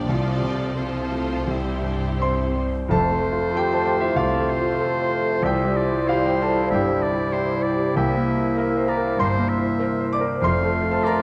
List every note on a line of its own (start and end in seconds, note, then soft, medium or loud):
0.00 0.10 F2 soft
0.00 0.10 A#3 soft
0.00 0.10 D4 soft
0.07 2.65 C2 soft
0.07 1.44 C2 medium
0.07 2.65 C3 soft
0.07 0.76 F3 soft
0.07 0.75 F4 soft
0.07 0.75 A4 soft
0.07 0.75 C5 soft
0.07 0.75 D5 medium
0.42 0.98 C3 soft
0.76 1.46 F3 soft
0.76 1.33 C4 soft
0.76 1.46 F4 soft
0.76 1.46 A4 soft
0.76 1.46 C5 soft
0.76 2.21 C5 medium
1.12 1.48 A3 soft
1.47 2.86 C2 soft
1.47 2.66 G3 soft
1.47 2.69 E4 soft
1.47 2.69 G4 soft
1.47 2.66 C5 soft
1.83 2.42 G2 soft
2.19 2.76 C4 soft
2.19 2.87 C5 medium
2.19 2.86 C6 medium
2.55 2.89 G3 soft
2.89 3.41 F1 medium
2.89 4.12 F2 medium
2.89 3.41 F2 medium
2.89 5.46 A3 medium
2.89 5.40 A3 medium
2.89 6.10 F4 medium
2.89 5.40 F4 medium
2.89 3.51 A4 medium
2.89 4.19 C5 medium
2.89 7.92 C5 medium
2.89 3.51 A5 medium
3.11 3.45 A3 medium
3.32 3.66 F4 medium
3.52 4.01 F4 medium
3.52 3.71 A4 medium
3.52 4.01 A4 medium
3.52 4.01 C5 medium
3.57 3.71 G4 medium
3.57 3.70 G5 medium
3.72 3.86 A4 medium
3.72 4.08 C5 medium
3.72 3.86 A5 medium
3.85 4.00 G4 soft
3.85 4.00 G5 medium
3.95 4.29 A4 medium
4.01 4.16 E4 medium
4.01 4.15 E5 medium
4.15 4.67 C2 medium
4.15 4.50 C3 medium
4.15 4.57 F4 medium
4.15 4.51 D5 medium
4.15 5.39 F5 medium
4.36 4.71 A3 soft
4.50 5.45 C5 medium
4.58 4.92 F4 soft
4.80 5.27 F4 medium
4.80 5.28 A4 medium
4.80 5.14 A4 medium
4.80 5.27 C5 medium
5.02 5.35 C5 medium
5.22 5.43 A4 soft
5.42 6.66 C2 medium
5.42 5.94 C2 medium
5.42 5.95 C2 medium
5.42 7.97 G3 medium
5.42 7.92 G3 medium
5.42 10.24 E4 medium
5.42 6.05 G4 medium
5.42 5.78 E5 medium
5.42 6.05 G5 medium
5.64 5.99 G3 medium
5.77 6.09 D5 medium
5.86 6.20 E4 medium
6.08 6.55 E4 medium
6.08 10.16 E4 soft
6.08 6.24 F4 medium
6.08 6.26 G4 medium
6.08 6.56 G4 medium
6.08 6.70 C5 medium
6.08 6.56 C5 medium
6.08 6.23 F5 medium
6.26 6.40 G4 soft
6.26 6.63 C5 medium
6.26 6.39 G5 medium
6.42 6.70 A4 medium
6.42 6.70 A5 medium
6.52 6.73 G4 soft
6.70 7.21 G1 medium
6.70 7.20 G2 medium
6.70 7.04 G2 medium
6.70 7.04 E5 medium
6.70 7.31 G5 medium
6.75 7.31 G4 medium
6.92 7.25 G3 soft
7.02 7.34 D5 medium
7.13 7.46 E4 soft
7.32 7.79 E4 medium
7.32 7.80 G4 medium
7.32 7.67 G4 soft
7.32 7.79 C5 medium
7.32 7.64 C5 medium
7.56 7.88 C5 soft
7.63 7.95 D5 medium
7.76 7.96 G4 soft
7.95 8.45 C2 medium
7.95 9.16 C2 medium
7.95 8.45 C2 medium
7.95 10.16 A#3 medium
7.95 10.24 A#3 medium
7.95 8.85 G4 soft
7.95 11.22 C5 medium
7.95 8.57 E5 medium
7.95 8.85 G5 medium
8.17 8.50 A#3 soft
8.38 8.70 E4 medium
8.57 9.04 E4 medium
8.57 8.87 A#4 medium
8.57 9.04 A#4 medium
8.57 9.04 C5 medium
8.57 8.91 E5 medium
8.77 9.11 C5 medium
8.88 8.96 A#4 soft
8.88 9.21 D5 medium
8.88 9.17 A#5 medium
8.97 9.31 A#4 soft
9.18 9.69 G1 medium
9.18 9.52 G2 soft
9.18 9.68 G2 medium
9.18 9.51 C5 medium
9.18 9.99 C5 medium
9.18 10.08 C6 medium
9.39 9.72 A#3 soft
9.49 10.15 E5 medium
9.58 9.92 E4 soft
9.79 10.27 E4 medium
9.79 10.13 A#4 soft
9.79 10.27 A#4 medium
9.79 10.27 C5 medium
10.00 10.34 C5 medium
10.13 10.42 D5 medium
10.13 10.41 D6 medium
10.21 10.42 A#4 medium
10.41 10.92 F1 medium
10.41 11.22 F2 medium
10.41 10.92 F2 medium
10.41 11.22 A3 medium
10.41 11.22 F4 medium
10.41 10.87 C5 medium
10.41 11.05 F5 medium
10.41 10.86 C6 medium
10.63 10.96 A3 medium
10.82 11.16 F4 medium
10.91 11.03 A4 medium
10.91 11.04 A5 medium
11.04 11.22 F4 medium
11.04 11.22 A4 medium
11.04 11.22 A#4 medium
11.04 11.22 C5 medium
11.04 11.22 D5 medium
11.04 11.22 A#5 medium